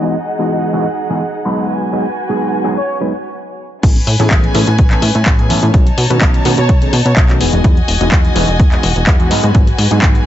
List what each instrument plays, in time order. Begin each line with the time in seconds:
Already playing: violin section D#4 G#4 D#5 F#5
0.02 reed electric piano E3 G#3 B3 D#4 F#4
0.38 reed electric piano E3 G#3 B3 D#4 F#4
0.73 reed electric piano E3 G#3 B3 D#4 F#4
1.10 reed electric piano E3 G#3 B3 D#4 G#4
1.45 reed electric piano F#3 G#3 B3 D#4 B4
1.69 violin section F#4 B4 G#5
1.93 reed electric piano F#3 G#3 B3 D#4 G#4
2.29 reed electric piano F#3 G#3 B3 D#4 G#4
2.64 reed electric piano F#3 G#3 B3 D#4 G#4
2.77 analog polysynth C#5
3.00 reed electric piano F#3 G#3 B3 D#4 B4
3.83 analog synth bass A1, reed electric piano E3 A3 B3 C#4 G#4, violin section C#4 B4 G#5, kick, closed hi-hat, crash
3.96 closed hi-hat
4.07 analog synth bass A2, open hi-hat
4.19 analog synth bass A2, reed electric piano E3 A3 B3 C#4 G#4, closed hi-hat
4.31 analog synth bass A1, kick, clap, closed hi-hat
4.44 closed hi-hat
4.54 analog synth bass A2, reed electric piano E3 A3 B3 C#4 G#4, open hi-hat
4.67 analog synth bass A2, closed hi-hat
4.78 analog synth bass A1, kick, closed hi-hat
4.91 reed electric piano E3 A3 B3 C#4 A4, clap, closed hi-hat
5.02 analog synth bass A2, open hi-hat
5.15 analog synth bass A2, closed hi-hat
5.26 analog synth bass A1, kick, clap, closed hi-hat
5.39 reed electric piano E3 A3 B3 C#4 G#4, closed hi-hat
5.50 analog synth bass A2, reed electric piano E3 A3 B3 C#4 A4, open hi-hat
5.63 analog synth bass A2, closed hi-hat
5.73 analog synth bass B1, reed electric piano D#3 A3 B3 C#4 F#4, violin section D#4 C#5 A5, kick, closed hi-hat
5.87 closed hi-hat
5.98 analog synth bass B2, open hi-hat
6.10 analog synth bass B2, reed electric piano D#3 A3 B3 C#4 F#4, closed hi-hat
6.21 analog synth bass B1, kick, clap, closed hi-hat
6.34 closed hi-hat
6.45 analog synth bass B2, reed electric piano D#3 A3 B3 C#4 F#4, open hi-hat
6.58 analog synth bass B2, analog polysynth C#5, closed hi-hat
6.69 analog synth bass B1, kick, closed hi-hat
6.81 reed electric piano D#3 A3 B3 C#4 G#4, closed hi-hat
6.93 analog synth bass B2, open hi-hat
7.05 analog synth bass B2, analog polysynth C#5, closed hi-hat
7.16 analog synth bass B1, kick, clap, closed hi-hat
7.29 reed electric piano D#3 A3 B3 C#4 F#4, clap, closed hi-hat
7.40 analog synth bass E1, reed electric piano E3 G#3 B3 D#4 G#4, violin section F#4 D#5 G#5, open hi-hat
7.53 analog synth bass E1, closed hi-hat
7.64 analog synth bass E2, reed electric piano E3 G#3 B3 D#4 F#4, kick, closed hi-hat
7.77 closed hi-hat
7.88 analog synth bass E1, open hi-hat
8.00 analog synth bass E1, reed electric piano E3 G#3 B3 D#4 F#4, closed hi-hat
8.12 analog synth bass E2, kick, clap, closed hi-hat
8.25 closed hi-hat
8.35 analog synth bass E1, reed electric piano E3 G#3 B3 D#4 F#4, open hi-hat
8.48 analog synth bass E1, closed hi-hat
8.59 analog synth bass E2, kick, closed hi-hat
8.72 reed electric piano E3 G#3 B3 D#4 G#4, clap, closed hi-hat
8.83 analog synth bass E1, open hi-hat
8.96 analog synth bass E1, closed hi-hat
9.07 analog synth bass E2, kick, clap, closed hi-hat
9.19 reed electric piano E3 G#3 B3 D#4 F#4, closed hi-hat
9.30 analog synth bass G#2, reed electric piano F#3 G#3 B3 D#4 B4, violin section B4 G#5, open hi-hat
9.43 analog synth bass G#2, closed hi-hat
9.54 analog synth bass G#1, reed electric piano F#3 G#3 B3 D#4 G#4, kick, closed hi-hat
9.67 closed hi-hat
9.78 analog synth bass G#2, open hi-hat
9.91 analog synth bass G#2, reed electric piano F#3 G#3 B3 D#4 G#4, closed hi-hat
10.02 analog synth bass G#1, kick, clap, closed hi-hat
10.15 closed hi-hat